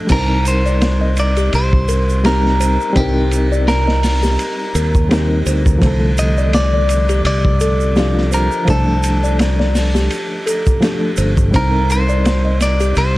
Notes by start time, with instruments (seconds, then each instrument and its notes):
Already playing: reed electric piano F3 A3 D4 A4
0.07 fingered electric bass C2, reed electric piano G3 C4, music box C5, kick, crash, ride, shaker
0.12 reed electric piano D#4 A#4, clean electric guitar A#4
0.45 clean electric guitar C5, ride, shaker
0.66 music box D5, shaker
0.81 snare, ride, shaker
1.01 music box D#5
1.16 clean electric guitar D5, ride, shaker
1.36 music box G4, ride, shaker
1.53 fingered electric bass C2, clean electric guitar C5, ride, shaker
1.73 kick
1.88 music box A#4, ride, shaker
2.09 shaker
2.24 reed electric piano G3 C4 D#4 A#4, music box G4, clean electric guitar A#4, snare, ride, shaker
2.45 snare
2.60 music box C5, ride, shaker
2.81 shaker
2.93 fingered electric bass C2, reed electric piano G3 C4, music box C5, kick, ride, shaker
2.97 reed electric piano D#4 A#4, clean electric guitar G4
3.31 ride, shaker
3.52 music box D5, shaker
3.68 clean electric guitar A#4, snare, ride, shaker
3.87 music box D#5, snare
4.03 snare, open hi-hat, shaker
4.23 music box G4, snare, shaker
4.39 ride, shaker
4.75 fingered electric bass D#2, music box A#4, ride, shaker
4.95 kick, shaker
5.09 reed electric piano G3 C4 D#4 A#4, music box G4, snare, ride, shaker
5.46 fingered electric bass D2, music box C5, ride, shaker
5.66 kick, shaker
5.79 fingered electric bass C2, reed electric piano F3 A3, music box C5, kick, shaker
5.83 reed electric piano D3 A4, ride
6.18 clean electric guitar D#5, ride, shaker
6.38 music box D5, shaker
6.53 clean electric guitar D5, snare, ride, shaker
6.74 music box D5
6.89 ride, shaker
7.09 music box G4, ride, shaker
7.25 fingered electric bass C2, clean electric guitar D5, ride, shaker
7.45 kick
7.60 music box A4, ride, shaker
7.80 shaker
7.96 reed electric piano F3 D4 F4, music box G4, snare, ride, shaker
8.17 snare
8.32 clean electric guitar A#4, music box C5, ride, shaker
8.52 shaker
8.65 fingered electric bass C2, reed electric piano F3 A3, music box C5, kick, ride, shaker
8.70 reed electric piano D4 A4, clean electric guitar A4
9.03 ride, shaker
9.24 music box D5, shaker
9.39 snare, ride, shaker
9.59 music box D5, snare
9.75 snare, open hi-hat, shaker
9.95 music box G4, snare, shaker
10.10 ride, shaker
10.46 music box A4, ride, shaker
10.66 kick, shaker
10.81 reed electric piano F3 A3 D4 A4, music box G4, snare, ride, shaker
11.17 fingered electric bass G1, music box C5, ride, shaker
11.37 kick, shaker
11.51 fingered electric bass C2, reed electric piano G3 C4, music box C5, kick, ride, shaker
11.56 reed electric piano D#4 A#4, clean electric guitar A#4
11.90 clean electric guitar C5, ride, shaker
12.09 music box D5, shaker
12.25 snare, ride, shaker
12.45 music box D#5
12.60 clean electric guitar D5, snare, ride, shaker
12.80 music box G4, ride, shaker
12.95 fingered electric bass C2, clean electric guitar C5, ride, shaker